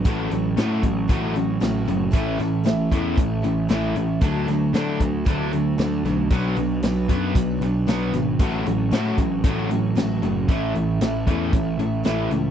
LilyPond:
<<
  \new Staff \with { instrumentName = "Twelve-string acoustic guitar" } { \time 4/4 \key fis \phrygian \tempo 4 = 115 <a cis' fis' a'>8 <cis' fis' a'>8 <a cis' fis' a'>8 <cis' fis' a'>8 <a cis' fis' a'>8 <cis' fis' a'>8 <a cis' fis' a'>8 <cis' fis' a'>8 | <a, e a cis' e' a'>8 <a cis' e' a'>8 <a, e a cis' e' a'>8 <a cis' e' a'>8 <a cis' e' a'>8 <a cis' e' a'>8 <a, e a cis' e' a'>8 <a cis' e' a'>8 | <d a d' fis' a'>8 <d' fis' a'>8 <d a d' fis' a'>8 <d' fis' a'>8 <a d' fis' a'>8 <d' fis' a'>8 <d a d' fis' a'>8 <d' fis' a'>8 | <b, fis d' fis' b'>8 <d' fis' b'>8 <b, fis d' fis' b'>8 <d' fis' b'>8 <fis d' fis' b'>8 <d' fis' b'>8 <b, fis d' fis' b'>8 <d' fis' b'>8 |
<a cis' fis' a'>8 <cis' fis' a'>8 <a cis' fis' a'>8 <cis' fis' a'>8 <a cis' fis' a'>8 <cis' fis' a'>8 <a cis' fis' a'>8 <cis' fis' a'>8 | <a, e a cis' e' a'>8 <a cis' e' a'>8 <a, e a cis' e' a'>8 <a cis' e' a'>8 <a cis' e' a'>8 <a cis' e' a'>8 <a, e a cis' e' a'>8 <a cis' e' a'>8 | }
  \new Staff \with { instrumentName = "Overdriven electric guitar" } { \time 4/4 \key fis \phrygian <a cis' fis'>8 <a cis'>8 <a cis' fis'>8 <a cis'>8 <a cis' fis'>8 <a cis'>8 <a cis'>8 <a cis'>8 | <a cis' e'>8 <a cis'>8 <a cis'>8 <a cis' e'>8 <a cis'>8 <a cis'>8 <a cis' e'>8 <a cis'>8 | <d fis a>8 <d fis>8 <d fis a>8 <d fis>8 <d fis a>8 <d fis>8 <d fis>8 <d fis>8 | <b, fis b>8 <b, fis>8 <b, fis>8 <b, fis b>8 <b, fis>8 <b, fis>8 <b, fis b>8 <b, fis>8 |
<a cis' fis'>8 <a cis'>8 <a cis' fis'>8 <a cis'>8 <a cis' fis'>8 <a cis'>8 <a cis'>8 <a cis'>8 | <a cis' e'>8 <a cis'>8 <a cis'>8 <a cis' e'>8 <a cis'>8 <a cis'>8 <a cis' e'>8 <a cis'>8 | }
  \new Staff \with { instrumentName = "Distorted electric guitar" } { \clef bass \time 4/4 \key fis \phrygian <a, fis a>8 <a, fis>8 <a, fis a>8 <a, fis>8 <a, fis a>8 <a, fis>8 <a, fis>8 <a, fis>8 | <a, e a>8 <a, e>8 <a, e>8 <a, e a>8 <a, e>8 <a, e>8 <a, e a>8 <a, e>8 | <d a d'>8 <d a>8 <d a d'>8 <d a>8 <d a d'>8 <d a>8 <d a>8 <d a>8 | <b, fis b>8 <b, fis>8 <b, fis>8 <b, fis b>8 <b, fis>8 <b, fis>8 <b, fis b>8 <b, fis>8 |
<a, fis a>8 <a, fis>8 <a, fis a>8 <a, fis>8 <a, fis a>8 <a, fis>8 <a, fis>8 <a, fis>8 | <a, e a>8 <a, e>8 <a, e>8 <a, e a>8 <a, e>8 <a, e>8 <a, e a>8 <a, e>8 | }
  \new Staff \with { instrumentName = "Picked electric bass" } { \clef bass \time 4/4 \key fis \phrygian a,,8 a,,8 a,8 a,,8 a,,4 a,,8 fis,,8 | a,,8 a,,8 a,,8 e,8 a,,8 a,,8 a,,8 a,,8 | d,8 d,8 d8 d,8 d,4 d,8 b,,8 | b,,8 b,,8 b,,8 fis,8 b,,8 b,,8 b,,8 gis,,8 |
a,,8 a,,8 a,8 a,,8 a,,4 a,,8 fis,,8 | a,,8 a,,8 a,,8 e,8 a,,8 a,,8 a,,8 cis,8 | }
  \new DrumStaff \with { instrumentName = "Drums" } \drummode { \time 4/4 <hh bd>8 hh8 <hh sn>8 <hh bd>8 <hh bd>8 hh8 <hh sn>8 hh8 | <hh bd>8 <hh sn>8 <hh sn>8 <hh bd>8 <hh bd>8 hh8 <hh sn>8 hh8 | <hh bd>8 <hh sn>8 <hh sn>8 <hh bd>8 <hh bd>8 hh8 <hh sn>8 <hh sn>8 | <hh bd>8 hh8 <hh sn>8 <hh bd>8 <hh bd>8 hh8 <hh sn>8 <hh sn>8 |
<hh bd>8 hh8 <hh sn>8 <hh bd>8 <hh bd>8 hh8 <hh sn>8 hh8 | <hh bd>8 hh8 <hh sn>8 <hh bd>8 <hh bd>8 hh8 <hh sn>8 hh8 | }
>>